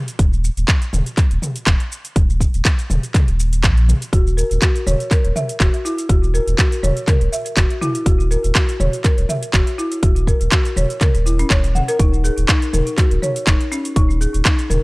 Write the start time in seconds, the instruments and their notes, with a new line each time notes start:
0.08 closed hi-hat, shaker
0.19 sub bass D#1, kick, closed hi-hat, shaker
0.33 shaker
0.44 shaker
0.57 sub bass D#1, closed hi-hat, shaker
0.68 kick, clap, closed hi-hat, shaker
0.82 closed hi-hat, shaker
0.93 sub bass D#1, mid tom, shaker
1.06 closed hi-hat, shaker
1.17 kick, clap, closed hi-hat, shaker
1.31 sub bass D#1, closed hi-hat
1.42 mid tom, shaker
1.56 closed hi-hat, shaker
1.67 sub bass D#1, kick, clap, closed hi-hat, shaker
1.80 closed hi-hat
1.92 shaker
2.05 closed hi-hat, shaker
2.16 sub bass D#1, kick, closed hi-hat, shaker
2.30 shaker
2.41 kick, shaker
2.54 sub bass D#1, closed hi-hat, shaker
2.65 kick, clap, closed hi-hat, shaker
2.79 closed hi-hat, shaker
2.90 sub bass D#1, mid tom, shaker
3.03 closed hi-hat, shaker
3.14 kick, clap, closed hi-hat, mid tom, shaker
3.28 sub bass D#1, closed hi-hat
3.40 shaker
3.53 closed hi-hat, shaker
3.64 sub bass A#1, kick, clap, closed hi-hat, shaker
3.77 closed hi-hat
3.89 mid tom, shaker
4.02 closed hi-hat, shaker
4.13 sub bass D#1, marimba F#4, kick, closed hi-hat, shaker
4.27 shaker
4.37 marimba A#4, shaker
4.51 sub bass D#1, closed hi-hat, shaker
4.62 marimba F#4, kick, clap, closed hi-hat, shaker
4.76 closed hi-hat, shaker
4.87 sub bass D#1, marimba C#5, mid tom, shaker
5.00 closed hi-hat, shaker
5.11 marimba A#4, kick, clap, closed hi-hat, shaker
5.25 sub bass D#1, closed hi-hat
5.36 marimba E5, mid tom, shaker
5.49 closed hi-hat, shaker
5.60 sub bass D#1, marimba F#4, kick, clap, closed hi-hat, shaker
5.74 closed hi-hat
5.85 marimba E4, shaker
5.98 closed hi-hat, shaker
6.09 sub bass D#1, marimba F#4, kick, closed hi-hat, shaker
6.24 shaker
6.34 marimba A#4, shaker
6.47 sub bass D#1, closed hi-hat, shaker
6.58 marimba F#4, kick, clap, closed hi-hat, shaker
6.72 closed hi-hat, shaker
6.83 sub bass D#1, marimba C#5, mid tom, shaker
6.97 closed hi-hat, shaker
7.08 marimba A#4, kick, clap, closed hi-hat, mid tom, shaker
7.21 sub bass D#1, closed hi-hat
7.32 marimba E5, shaker
7.46 closed hi-hat, shaker
7.57 sub bass D#1, marimba F#4, kick, clap, closed hi-hat, shaker
7.70 closed hi-hat
7.81 marimba E4, mid tom, shaker
7.95 closed hi-hat, shaker
8.06 sub bass D#1, marimba F#4, kick, closed hi-hat, shaker
8.20 shaker
8.31 marimba A#4, shaker
8.44 sub bass D#1, closed hi-hat, shaker
8.55 marimba F#4, kick, clap, closed hi-hat, shaker
8.69 closed hi-hat, shaker
8.80 sub bass D#1, marimba C#5, mid tom, shaker
8.93 closed hi-hat, shaker
9.04 marimba A#4, kick, clap, closed hi-hat, shaker
9.18 sub bass D#1, closed hi-hat
9.29 marimba E5, mid tom, shaker
9.43 closed hi-hat, shaker
9.54 sub bass D#1, marimba F#4, kick, clap, closed hi-hat, shaker
9.67 closed hi-hat
9.78 marimba E4, shaker
9.92 closed hi-hat, shaker
10.03 sub bass D#1, marimba F#4, kick, closed hi-hat, shaker
10.16 closed hi-hat, shaker
10.27 marimba A#4, kick, shaker
10.41 sub bass D#1, closed hi-hat, shaker
10.52 marimba F#4, kick, clap, closed hi-hat, shaker
10.65 closed hi-hat, shaker
10.76 sub bass D#1, marimba C#5, mid tom, shaker
10.90 closed hi-hat, shaker
11.01 marimba A#4, kick, clap, closed hi-hat, mid tom, shaker
11.14 sub bass D#1, closed hi-hat, shaker
11.26 marimba E4, shaker
11.39 marimba C#4, closed hi-hat, shaker
11.50 sub bass D#1, marimba C#5, kick, clap, closed hi-hat, shaker
11.64 closed hi-hat, shaker
11.75 marimba F#5, mid tom, shaker
11.88 marimba A#4, closed hi-hat, shaker
11.99 sub bass D#1, marimba D#4, kick, closed hi-hat, shaker
12.14 shaker
12.24 marimba G#4, shaker
12.38 sub bass D#1, closed hi-hat, shaker
12.49 marimba D#4, kick, clap, closed hi-hat, shaker
12.62 closed hi-hat, shaker
12.73 sub bass D#1, marimba A#4, mid tom, shaker
12.87 closed hi-hat, shaker
12.98 marimba F#4, kick, clap, closed hi-hat, shaker
13.11 sub bass D#1, closed hi-hat
13.22 marimba C#5, mid tom, shaker
13.36 closed hi-hat, shaker
13.47 sub bass D#1, marimba D#4, kick, clap, closed hi-hat, shaker
13.61 closed hi-hat
13.72 marimba C#4, shaker
13.85 closed hi-hat, shaker
13.96 sub bass D#1, marimba D#4, kick, closed hi-hat, shaker
14.10 shaker
14.21 marimba G#4, shaker
14.34 sub bass D#1, closed hi-hat, shaker
14.45 marimba D#4, kick, clap, closed hi-hat, shaker
14.59 closed hi-hat, shaker
14.70 sub bass D#1, marimba A#4, mid tom, shaker